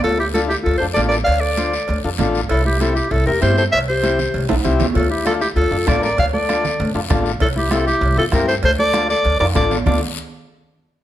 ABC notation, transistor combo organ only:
X:1
M:4/4
L:1/8
Q:1/4=195
K:Dm
V:1 name="Transistor combo organ"
z2 [DFA] z2 [DFA] [DFA] z | z2 [DFc] z2 [DFA] [DFA] z | z2 [CEG] z2 [CEG] [CEG] z | z2 [CEG] z2 [CEA] [CEG] z |
z2 [DFA] z2 [DFA] [DFA] z | z2 [DFA] z2 [DFA] [DFA] z | z2 [CEG] z2 [CEG] [CEG] z | z2 [DFA] z2 [DFA] [DFA] z |
[DFA] z6 z |]